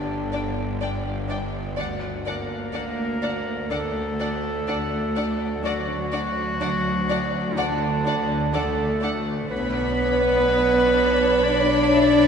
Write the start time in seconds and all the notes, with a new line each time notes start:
Already playing: G1 G2 D3 D4
0.32 D4 D5 G5
0.81 G2 D4 D5 G5
1.29 D4 D5 G5
1.77 D2 D4 D5 F#5
2.26 A#3 D4 A#4 D5 F#5
2.74 D2 D4 D5 F#5
3.22 D4 D5 F#5
3.70 D2 A3 D4 A4 D5 F#5
4.20 D4 D5 F#5
4.67 D2 D4 D5 F#5
5.16 D4 D5 F#5
5.64 D2 F#3 D4 F#4 D5 F#5
6.13 D4 D5 F#5
6.61 D2 D4 D5 F#5
7.09 D4 D5 F#5
7.57 D2 D3 D4 D5 F#5
8.06 D4 D5 F#5
8.54 D2 A3 D4 A4 D5 F#5
9.02 D4 D5 F#5
9.51 B1 B3 D4 B4 C#5 B5
11.44 D4 D5
11.94 E5